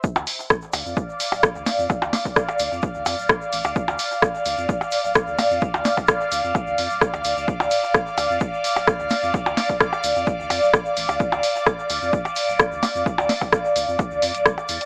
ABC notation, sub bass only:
X:1
M:4/4
L:1/16
Q:1/4=129
K:Dm
V:1 name="Sub bass" clef=bass
z D,, z4 D,, F,, z3 D,,, z D,, z F,, | z D,, z4 D,, F,, z D,, F,, D,,, z2 A,,, D,, | z D,, z4 D,, F,, z3 D,,, z D,, z F,, | z D,, z4 D,, F,, z D,, F,, D,,, z D,, D,, D,, |
z D,, z4 D,, F,, z3 D,,, z D,, z F,, | z D,, z4 D,, F,, z D,, F,, D,,, z2 A,,, D,, | z D,, z4 D,, F,, z3 D,,, z D,, z F,, | z D,, z4 D,, F,, z D,, F,, D,,, C,, z E,, z |]